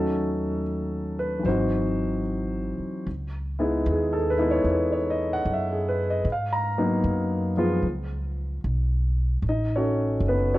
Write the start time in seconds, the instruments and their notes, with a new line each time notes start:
Already playing: upright bass D#2, grand piano F#3 A3 C#4 D#4 F#4 A4
1.19 grand piano B4
1.39 grand piano E3 F#3
1.45 upright bass G#1, grand piano C4 D#4 F#4 C5
1.51 grand piano D#4
2.78 muted upright bass stroke
3.07 upright bass C#2
3.59 grand piano G#3 B3 D#4 E4
3.86 upright bass D#2
3.92 grand piano G#4
4.13 grand piano A4
4.30 grand piano B4
4.38 grand piano G#3 B3 D#4 E4
4.51 grand piano C#5
4.64 upright bass E2
4.73 grand piano B4
4.92 grand piano C#5
5.10 grand piano D#5
5.33 grand piano F#5
5.45 upright bass F#2
5.53 grand piano E5
5.73 grand piano G#4
5.89 grand piano B4
6.10 grand piano D#5
6.25 upright bass G#2
6.32 grand piano F5
6.53 grand piano A#5
6.78 grand piano F#3 A#3 B3 D#4
7.04 upright bass F#2
7.57 grand piano F3 G#3 B3 F4
7.82 upright bass C#2
8.64 upright bass B1
9.42 upright bass A1
9.49 grand piano D#4 D#5
9.76 grand piano C#4 F#4 A4 C#5
10.21 upright bass F#1
10.28 grand piano B3 B4
10.54 grand piano C#4 F#4 A4 C#5